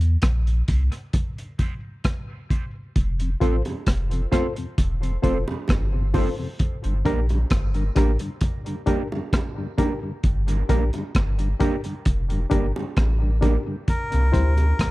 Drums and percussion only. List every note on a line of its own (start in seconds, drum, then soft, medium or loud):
0.01 closed hi-hat medium
0.22 kick loud
0.22 cross-stick loud
0.22 closed hi-hat loud
0.47 closed hi-hat soft
0.68 kick medium
0.68 closed hi-hat medium
0.92 closed hi-hat soft
1.13 kick loud
1.13 closed hi-hat medium
1.38 closed hi-hat soft
1.59 kick medium
1.59 closed hi-hat medium
2.04 kick loud
2.04 cross-stick loud
2.04 closed hi-hat medium
2.50 kick medium
2.50 closed hi-hat medium
2.96 kick loud
2.96 closed hi-hat medium
3.20 closed hi-hat medium
3.41 kick medium
3.41 closed hi-hat medium
3.65 closed hi-hat soft
3.65 high bongo medium
3.87 kick loud
3.87 cross-stick loud
3.87 closed hi-hat loud
4.11 closed hi-hat soft
4.33 kick medium
4.33 cross-stick medium
4.33 closed hi-hat medium
4.56 closed hi-hat medium
4.78 kick loud
4.78 closed hi-hat medium
5.03 closed hi-hat medium
5.24 kick medium
5.24 closed hi-hat medium
5.48 high bongo medium
5.68 kick loud
5.68 cross-stick loud
5.68 closed hi-hat medium
5.68 high bongo medium
6.14 kick medium
6.14 open hi-hat medium
6.14 high bongo medium
6.14 low bongo medium
6.59 kick loud
6.59 closed hi-hat medium
6.84 closed hi-hat medium
7.05 kick medium
7.05 closed hi-hat medium
7.29 closed hi-hat soft
7.29 high bongo medium
7.50 kick loud
7.50 cross-stick loud
7.50 closed hi-hat medium
7.74 closed hi-hat soft
7.96 kick loud
7.96 cross-stick medium
7.96 closed hi-hat loud
8.19 closed hi-hat medium
8.41 kick loud
8.41 closed hi-hat medium
8.66 closed hi-hat medium
8.87 kick medium
8.87 closed hi-hat medium
9.12 high bongo medium
9.33 kick loud
9.33 cross-stick loud
9.33 closed hi-hat medium
9.33 high bongo medium
9.78 kick medium
9.78 closed hi-hat medium
9.78 high bongo medium
9.78 low bongo medium
10.23 kick loud
10.23 closed hi-hat medium
10.48 closed hi-hat medium
10.69 kick medium
10.69 closed hi-hat medium
10.93 closed hi-hat soft
10.93 high bongo medium
11.15 kick loud
11.15 cross-stick loud
11.15 closed hi-hat loud
11.39 closed hi-hat medium
11.60 kick loud
11.60 closed hi-hat medium
11.84 closed hi-hat medium
12.05 kick loud
12.05 closed hi-hat medium
12.30 closed hi-hat medium
12.51 kick loud
12.51 closed hi-hat medium
12.76 high bongo medium
12.97 kick loud
12.97 cross-stick loud
12.97 closed hi-hat medium
12.97 high bongo medium
13.42 kick medium
13.42 closed hi-hat medium
13.42 high bongo medium
13.42 low bongo medium
13.88 kick loud
13.88 closed hi-hat medium
14.12 closed hi-hat medium
14.34 kick medium
14.34 closed hi-hat medium
14.57 closed hi-hat medium
14.57 high bongo medium
14.79 kick loud
14.79 cross-stick loud
14.79 closed hi-hat loud